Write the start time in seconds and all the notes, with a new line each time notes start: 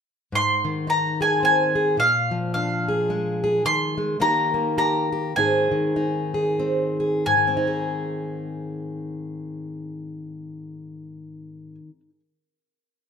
0.32 G#2 C6
0.65 D#3
0.87 D#4 A#5
1.21 G#4 G#5
1.43 C4 G#5
1.75 G#4
1.97 A#2 F5
2.31 F3
2.54 D4 F5
2.88 G#4
3.10 G#3
3.44 G#4
3.65 D#3 C6
3.97 G#3
4.20 D#3 A#3 D#4 G4 A#5
4.54 A#3
4.78 G4 A#5
5.12 G4
5.36 G#2 D#3 C4 D#4 G#4 G#5
5.71 D#3
5.96 D#4
6.34 G#4
6.59 C4
7.00 G#4
7.26 G#2 G#5
7.37 D#3
7.47 C4
7.57 D#4
7.67 G#4